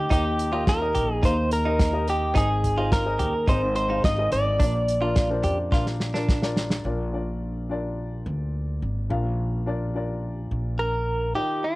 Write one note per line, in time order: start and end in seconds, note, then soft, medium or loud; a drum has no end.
0.00 0.10 D#4 medium
0.00 0.10 G4 medium
0.00 0.11 G4 medium
0.00 0.11 A#4 medium
0.00 2.35 C5 medium
0.00 0.12 D#5 medium
0.00 1.24 F5 medium
0.10 0.91 D#2 loud
0.10 0.91 D#3 medium
0.10 0.46 D#4 medium
0.10 0.24 D#4 loud
0.10 0.46 G4 medium
0.10 0.64 G4 medium
0.10 0.47 A#4 medium
0.10 0.47 D#5 medium
0.10 kick loud
0.10 closed hi-hat medium
0.39 closed hi-hat medium
0.52 0.76 D#4 medium
0.52 0.79 F4 medium
0.52 0.76 G4 medium
0.52 0.77 A#4 medium
0.52 0.77 D#5 medium
0.67 1.13 A#4 medium
0.67 kick loud
0.67 snare loud
0.67 closed hi-hat medium
0.80 1.17 D#4 medium
0.80 1.17 G4 medium
0.80 1.17 A#4 medium
0.80 1.17 D#5 medium
0.95 1.21 A#1 medium
0.95 1.08 G4 medium
0.95 closed hi-hat medium
0.95 floor tom medium
1.13 1.25 G#4 medium
1.23 2.31 D#2 loud
1.23 1.36 D#4 medium
1.23 1.59 D#4 medium
1.23 1.59 G4 medium
1.23 1.59 A#4 medium
1.23 1.50 C5 medium
1.23 1.60 F5 medium
1.23 kick loud
1.23 closed hi-hat medium
1.51 2.09 A#4 medium
1.51 closed hi-hat medium
1.65 1.89 D#4 medium
1.65 1.92 D#4 medium
1.65 1.89 G4 medium
1.65 1.90 A#4 medium
1.65 1.90 D#5 medium
1.79 kick loud
1.79 snare loud
1.79 closed hi-hat medium
1.92 2.29 D#4 medium
1.92 2.29 G4 medium
1.92 2.29 A#4 medium
1.92 2.29 D#5 medium
2.08 2.37 G4 medium
2.08 closed hi-hat medium
2.34 3.16 G#1 loud
2.34 3.15 G#2 medium
2.34 2.71 D#4 medium
2.34 2.48 D#4 loud
2.34 2.71 G#4 medium
2.34 2.92 G#4 medium
2.34 2.71 C5 medium
2.34 2.71 D#5 medium
2.34 kick loud
2.34 closed hi-hat medium
2.64 closed hi-hat medium
2.64 floor tom medium
2.77 3.01 D#4 medium
2.77 3.04 F4 medium
2.77 3.02 G#4 medium
2.77 3.02 C5 medium
2.77 3.02 D#5 medium
2.92 3.49 A#4 medium
2.92 kick loud
2.92 snare loud
2.92 closed hi-hat medium
3.05 3.41 D#4 medium
3.05 3.41 G#4 medium
3.05 3.42 C5 medium
3.05 3.42 D#5 medium
3.19 3.46 D#2 medium
3.19 3.33 G4 medium
3.19 closed hi-hat medium
3.19 floor tom medium
3.47 4.00 G#1 loud
3.47 3.61 D#4 medium
3.47 3.83 D#4 medium
3.47 3.84 G#4 medium
3.47 3.84 C5 medium
3.47 3.75 C5 medium
3.47 3.84 D#5 medium
3.47 kick loud
3.47 closed hi-hat medium
3.76 4.04 C5 medium
3.76 closed hi-hat medium
3.89 4.13 D#4 medium
3.89 4.16 D#4 medium
3.89 4.14 G#4 medium
3.89 4.14 C5 medium
3.89 4.14 F5 medium
4.04 4.30 G#1 medium
4.04 4.30 D#5 medium
4.04 kick loud
4.04 snare loud
4.04 closed hi-hat medium
4.17 4.54 D#4 medium
4.17 4.54 G#4 medium
4.17 4.54 C5 medium
4.17 4.54 D#5 medium
4.32 4.58 G#1 medium
4.32 6.25 D5 medium
4.32 closed hi-hat medium
4.60 5.40 A#1 loud
4.60 5.40 A#2 medium
4.60 4.73 D4 medium
4.60 4.96 D4 medium
4.60 4.96 F4 medium
4.60 4.96 A#4 medium
4.60 4.96 D5 medium
4.60 kick loud
4.60 closed hi-hat medium
4.88 closed hi-hat medium
5.01 5.26 D4 medium
5.01 5.26 F4 medium
5.01 5.29 F4 medium
5.01 5.26 A#4 medium
5.01 5.26 F5 medium
5.16 kick loud
5.16 snare medium
5.16 closed hi-hat medium
5.29 5.66 D4 medium
5.29 5.66 F4 medium
5.29 5.66 A#4 medium
5.29 5.66 C5 medium
5.44 5.70 F2 medium
5.44 5.57 G4 medium
5.44 closed hi-hat medium
5.44 floor tom medium
5.71 6.81 A#1 medium
5.71 6.08 D4 medium
5.71 6.08 F4 medium
5.71 5.86 F4 medium
5.71 6.08 A#4 medium
5.71 6.08 F5 medium
5.71 kick loud
5.71 snare medium
5.87 snare soft
6.00 snare medium
6.13 6.38 D4 medium
6.13 6.41 D4 medium
6.13 6.38 F4 medium
6.13 6.38 A#4 medium
6.13 6.39 D5 medium
6.13 snare medium
6.29 kick loud
6.29 snare medium
6.42 6.78 D4 medium
6.42 6.78 F4 medium
6.42 6.79 A#4 medium
6.42 6.79 D5 medium
6.42 snare medium
6.57 snare medium
6.70 snare medium
6.84 8.21 A#1 medium
6.84 7.66 A#2 medium
6.84 7.09 D4 medium
6.84 7.09 F4 medium
6.84 7.09 A#4 medium
6.84 7.09 D5 medium
7.12 7.61 D4 medium
7.12 7.61 F4 medium
7.12 7.61 A#4 medium
7.12 7.62 D5 medium
7.69 8.65 D4 medium
7.69 8.66 F4 medium
7.69 8.66 A#4 medium
7.69 8.66 D5 medium
8.26 8.78 D2 medium
8.82 9.08 G#1 medium
9.09 10.47 A#1 loud
9.09 9.91 A#2 medium
9.09 9.58 D4 medium
9.09 9.58 F4 medium
9.09 9.58 A#4 medium
9.09 9.59 F5 medium
9.66 9.90 D4 medium
9.66 9.90 F4 medium
9.66 9.91 A#4 medium
9.66 9.91 D5 medium
9.94 10.90 D4 medium
9.94 10.91 F4 medium
9.94 10.91 A#4 medium
9.94 10.91 D5 medium
10.51 11.31 A#1 medium
10.79 11.35 A#4 medium
11.34 11.76 D#3 soft
11.34 11.71 D#4 medium
11.34 11.71 F4 soft
11.34 11.64 G4 medium
11.34 11.71 A#4 soft
11.34 11.72 D#5 medium
11.64 11.76 F4 medium